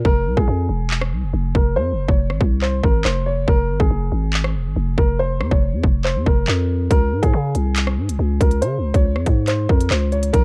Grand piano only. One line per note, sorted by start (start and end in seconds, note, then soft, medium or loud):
0.05 0.35 A#4 loud
0.37 1.51 G#4 medium
1.55 1.75 A#4 medium
1.76 2.06 C5 loud
2.08 2.59 C#5 medium
2.62 2.82 C5 medium
2.83 3.03 A#4 medium
3.05 3.25 C5 medium
3.26 3.46 C#5 medium
3.48 3.78 A#4 loud
3.80 4.94 G#4 medium
4.98 5.18 A#4 medium
5.19 5.50 C5 loud
5.51 6.02 C#5 medium
6.04 6.25 C5 medium
6.27 6.87 A#4 medium
6.91 7.21 A#4 medium
7.22 8.37 G#4 medium
8.41 8.61 A#4 medium
8.62 8.92 C5 loud
8.94 9.45 C#5 medium
9.48 9.68 C5 medium
9.69 9.89 A#4 medium
9.91 10.11 C5 medium
10.12 10.32 C#5 medium
10.33 10.44 A#4 loud